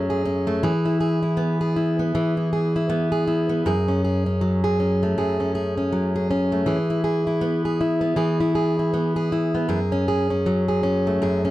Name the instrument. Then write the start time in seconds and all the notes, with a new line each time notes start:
steel-string acoustic guitar
Already playing: F#2 F#3 A3 C#4
0.10 G#4
0.25 C#4
0.47 A3
0.63 E3 G#4
0.85 E4
1.00 G#4
1.23 E4
1.37 B3
1.61 G#4
1.76 E4
1.99 B3
2.15 E3 G#4
2.37 E4
2.53 G#4
2.76 E4
2.90 B3
3.12 G#4
3.27 E4
3.49 B3
3.66 F#2 G#4
3.88 C#4
4.04 G#4
4.26 C#4
4.41 F#3
4.64 G#4
4.80 C#4
5.03 A3
5.18 F#2 G#4
5.40 C#4
5.55 G#4
5.77 C#4
5.92 F#3
6.16 G#4
6.31 C#4
6.52 A3
6.66 E3 G#4
6.90 E4
7.04 G#4
7.27 E4
7.41 B3
7.65 G#4
7.81 E4
8.01 B3
8.16 E3 G#4
8.40 E4
8.55 G#4
8.79 E4
8.94 B3
9.16 G#4
9.32 E4
9.55 B3
9.69 F#2 G#4
9.92 C#4
10.08 G#4
10.30 C#4
10.46 F#3
10.68 G#4
10.83 C#4
11.07 A3
11.22 F#2 G#4
11.45 C#4